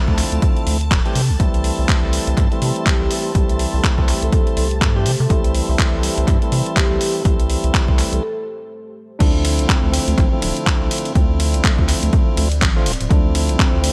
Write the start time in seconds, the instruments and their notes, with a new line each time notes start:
Already playing: tonewheel organ D3 F3 A3 C4 E4, ambient pad D4 A4, string machine A5
0.08 analog synth bass D2, kick
0.18 clap, open hi-hat
0.32 analog synth bass D2, closed hi-hat
0.42 kick, closed hi-hat
0.57 closed hi-hat
0.67 analog synth bass D2, open hi-hat
0.81 closed hi-hat
0.91 analog synth bass D1, kick, clap, closed hi-hat
1.05 tonewheel organ E3 G3 A3 C4 G4, closed hi-hat
1.15 analog synth bass C3, open hi-hat
1.25 ambient pad E5
1.30 analog synth bass C2
1.39 analog synth bass C2, tonewheel organ E3 G3 A3 C4 E4, ambient pad A3 G4 C5, kick, closed hi-hat
1.47 ambient pad C6
1.54 closed hi-hat
1.64 open hi-hat
1.79 analog synth bass C2
1.89 ambient pad A5, kick, clap, closed hi-hat
2.03 analog synth bass C2
2.13 open hi-hat
2.27 analog synth bass C2, closed hi-hat
2.37 analog synth bass G2, kick, clap, closed hi-hat
2.51 tonewheel organ E3 G3 A3 C4 E4, closed hi-hat
2.62 analog synth bass C3, open hi-hat
2.76 closed hi-hat
2.86 marimba G4, kick, clap, closed hi-hat
3.01 analog synth bass C2, marimba G4
3.11 marimba G4, open hi-hat
3.34 analog synth bass C2, tonewheel organ E3 G3 A3 C4 E4, kick, closed hi-hat
3.49 closed hi-hat
3.59 open hi-hat
3.74 analog synth bass C2
3.84 kick, clap, closed hi-hat
3.98 analog synth bass C2, kick
4.08 clap, open hi-hat
4.22 analog synth bass C2, marimba A4, closed hi-hat
4.33 marimba A4, kick, closed hi-hat
4.47 closed hi-hat
4.57 analog synth bass C2, marimba A4, open hi-hat
4.71 closed hi-hat
4.81 analog synth bass G2, kick, clap, closed hi-hat
4.95 tonewheel organ E3 G3 A3 C4 G4, marimba G4
5.06 analog synth bass C3, open hi-hat
5.20 analog synth bass C3, marimba A4
5.29 analog synth bass C2, tonewheel organ E3 G3 A3 C4 E4, kick, closed hi-hat
5.44 closed hi-hat
5.55 open hi-hat
5.69 analog synth bass C2
5.79 kick, clap, closed hi-hat
5.93 analog synth bass C2
6.03 open hi-hat
6.18 analog synth bass C2, closed hi-hat
6.28 analog synth bass G2, kick, clap, closed hi-hat
6.41 tonewheel organ E3 G3 A3 C4 E4, closed hi-hat
6.52 analog synth bass C3, open hi-hat
6.66 closed hi-hat
6.76 marimba G4, kick, clap, closed hi-hat
6.91 analog synth bass C2, marimba G4
7.01 marimba G4, open hi-hat
7.24 analog synth bass C2, tonewheel organ E3 G3 A3 C4 E4, kick, closed hi-hat
7.40 closed hi-hat
7.50 open hi-hat
7.64 analog synth bass C2, closed hi-hat
7.74 kick, clap, closed hi-hat
7.88 analog synth bass C2, kick
7.98 clap, open hi-hat
8.13 analog synth bass C2, marimba A4, closed hi-hat
8.23 marimba A4
9.19 analog synth bass D2, tonewheel organ D3 F3 A3 C4 E4, ambient pad F3 C4 D5, tine electric piano D4, kick, closed hi-hat, crash
9.45 open hi-hat, ride
9.59 analog synth bass C2, closed hi-hat
9.68 tine electric piano C4, kick, clap, closed hi-hat
9.83 analog synth bass D2
9.92 tine electric piano C4, open hi-hat, ride
10.08 analog synth bass D2, closed hi-hat
10.18 analog synth bass A1, kick, clap, closed hi-hat
10.31 tonewheel organ D3 F3 A3 C4 E4
10.41 analog synth bass D1, tine electric piano D4, open hi-hat, ride
10.57 closed hi-hat
10.67 kick, clap, closed hi-hat
10.81 analog synth bass C2
10.91 open hi-hat, ride
10.98 closed hi-hat
11.05 closed hi-hat
11.14 analog synth bass D2, tonewheel organ D3 F3 A3 C4 E4, tine electric piano C4, kick, closed hi-hat
11.40 open hi-hat, ride
11.54 analog synth bass C2, closed hi-hat
11.63 tine electric piano A3, kick, clap, closed hi-hat
11.79 analog synth bass D2, kick
11.87 tine electric piano C4, clap, open hi-hat, ride
12.03 analog synth bass D2, closed hi-hat
12.13 kick, closed hi-hat
12.37 analog synth bass D2, open hi-hat, ride
12.52 closed hi-hat
12.62 analog synth bass A1, kick, clap, closed hi-hat
12.76 tonewheel organ D3 F3 A3 C4 F4
12.86 analog synth bass D1, open hi-hat, ride
12.93 closed hi-hat
13.01 analog synth bass D1, closed hi-hat
13.09 analog synth bass D2, tonewheel organ D3 F3 A3 C4 E4, tine electric piano D4, kick, closed hi-hat
13.35 open hi-hat, ride
13.49 analog synth bass C2, closed hi-hat
13.58 tine electric piano C4, kick, clap, closed hi-hat
13.74 analog synth bass D2
13.82 tine electric piano C4, open hi-hat, ride